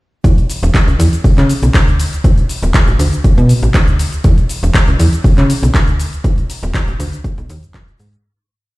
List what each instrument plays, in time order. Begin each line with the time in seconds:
0.24 fm bass E2, kick, closed hi-hat, shaker
0.38 closed hi-hat, shaker
0.50 open hi-hat, shaker
0.63 fm bass E1, closed hi-hat, shaker
0.74 kick, clap, closed hi-hat, shaker
0.88 fm bass C#2, closed hi-hat, shaker
0.99 fm bass E2, open hi-hat, shaker
1.13 closed hi-hat, shaker
1.24 fm bass C#3, kick, open hi-hat, shaker
1.38 fm bass C#3, clap, closed hi-hat, shaker
1.49 open hi-hat, shaker
1.63 fm bass B1, closed hi-hat, shaker
1.74 fm bass D2, kick, clap, closed hi-hat, shaker
1.88 closed hi-hat, shaker
2.00 open hi-hat, shaker
2.13 closed hi-hat, shaker
2.24 fm bass D2, kick, closed hi-hat, shaker
2.38 closed hi-hat, shaker
2.49 open hi-hat, shaker
2.63 fm bass D1, closed hi-hat, shaker
2.74 kick, clap, closed hi-hat, shaker
2.88 fm bass A1, closed hi-hat, shaker
2.99 fm bass D2, open hi-hat, shaker
3.13 closed hi-hat, shaker
3.24 kick, closed hi-hat, shaker
3.38 fm bass B2, closed hi-hat, shaker
3.49 open hi-hat, shaker
3.63 fm bass A1, closed hi-hat, shaker
3.74 fm bass D2, kick, clap, closed hi-hat, shaker
3.88 closed hi-hat, shaker
3.99 open hi-hat, shaker
4.12 closed hi-hat, shaker
4.24 fm bass E2, kick, closed hi-hat, shaker
4.38 closed hi-hat, shaker
4.49 open hi-hat, shaker
4.63 fm bass E1, closed hi-hat, shaker
4.74 kick, clap, closed hi-hat, shaker
4.88 fm bass C#2, closed hi-hat, shaker
4.99 fm bass E2, open hi-hat, shaker
5.13 closed hi-hat, shaker
5.24 fm bass C#3, kick, open hi-hat, shaker
5.38 fm bass C#3, clap, closed hi-hat, shaker
5.50 open hi-hat, shaker
5.63 fm bass B1, closed hi-hat, shaker
5.74 fm bass D2, kick, clap, closed hi-hat, shaker
5.88 closed hi-hat, shaker
6.00 open hi-hat, shaker
6.13 closed hi-hat, shaker
6.24 fm bass D2, kick, closed hi-hat, shaker
6.38 closed hi-hat, shaker
6.50 open hi-hat, shaker
6.63 fm bass D1, closed hi-hat, shaker
6.74 kick, clap, closed hi-hat, shaker
6.88 fm bass A1, closed hi-hat, shaker
7.00 fm bass D2, open hi-hat, shaker
7.13 closed hi-hat, shaker
7.24 kick, closed hi-hat, shaker
7.38 fm bass B1, closed hi-hat, shaker
7.50 fm bass D#2, open hi-hat, shaker
7.63 fm bass F#2, closed hi-hat, shaker
7.74 fm bass F#2, kick, clap, closed hi-hat, shaker
7.88 closed hi-hat, shaker
7.99 fm bass G#2, open hi-hat, shaker
8.13 closed hi-hat, shaker